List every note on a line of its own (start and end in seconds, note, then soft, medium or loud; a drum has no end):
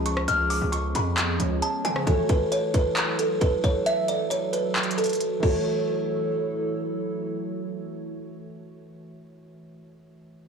0.00 0.26 C#2 loud
0.00 1.35 F3 medium
0.00 2.04 F3 medium
0.00 1.36 G#3 medium
0.00 0.26 C#4 medium
0.00 1.36 C#4 medium
0.00 1.36 G#4 medium
0.00 2.04 G#4 loud
0.00 1.37 C#5 medium
0.06 0.27 C#6 medium
0.06 closed hi-hat medium
0.17 cross-stick loud
0.28 0.60 C#2 loud
0.28 2.05 B3 medium
0.28 0.49 F6 loud
0.28 closed hi-hat medium
0.50 0.71 D6 medium
0.50 open hi-hat medium
0.62 0.94 C#2 loud
0.72 0.94 C#6 medium
0.72 closed hi-hat medium
0.95 1.38 F2 loud
0.95 1.59 B5 medium
0.95 closed hi-hat loud
1.18 clap loud
1.18 closed hi-hat medium
1.39 1.61 C#2 loud
1.39 2.07 F3 medium
1.39 2.07 G#3 medium
1.39 2.07 C#4 medium
1.39 2.07 G#4 medium
1.39 2.07 C#5 medium
1.39 closed hi-hat medium
1.62 1.83 A5 medium
1.62 closed hi-hat medium
1.85 2.06 C#3 loud
1.85 2.06 G#5 medium
1.85 closed hi-hat medium
1.96 cross-stick loud
2.06 5.38 E3 medium
2.06 5.40 F#3 medium
2.06 5.39 A3 medium
2.06 3.84 E4 medium
2.06 5.39 F#4 medium
2.06 2.28 A4 medium
2.06 5.40 A4 loud
2.06 5.40 C#5 medium
2.06 kick loud
2.06 closed hi-hat medium
2.29 2.51 B4 medium
2.29 kick loud
2.29 closed hi-hat medium
2.52 2.73 C#5 medium
2.52 closed hi-hat medium
2.74 3.16 B4 medium
2.74 kick medium
2.74 closed hi-hat medium
2.97 clap loud
2.97 closed hi-hat medium
3.19 3.40 A4 medium
3.19 closed hi-hat medium
3.41 3.62 B4 medium
3.41 kick medium
3.41 closed hi-hat medium
3.64 3.85 C#5 medium
3.64 kick loud
3.64 closed hi-hat medium
3.86 5.41 F#4 medium
3.86 4.07 E5 loud
3.86 closed hi-hat medium
4.08 4.30 D5 medium
4.08 closed hi-hat medium
4.30 4.52 C#5 medium
4.30 closed hi-hat medium
4.53 4.95 B4 medium
4.53 closed hi-hat medium
4.76 clap loud
4.76 closed hi-hat medium
4.83 closed hi-hat medium
4.91 closed hi-hat medium
4.98 5.40 A4 medium
4.98 closed hi-hat medium
5.04 closed hi-hat medium
5.06 closed hi-hat medium
5.09 closed hi-hat medium
5.13 closed hi-hat medium
5.15 closed hi-hat soft
5.21 closed hi-hat medium
5.40 9.03 E3 medium
5.40 9.06 F#3 medium
5.40 9.05 A3 medium
5.40 9.06 E4 medium
5.40 6.96 A4 medium
5.40 9.06 A4 loud
5.40 kick loud
5.40 crash medium
5.44 9.07 F#4 medium
5.44 9.09 C#5 medium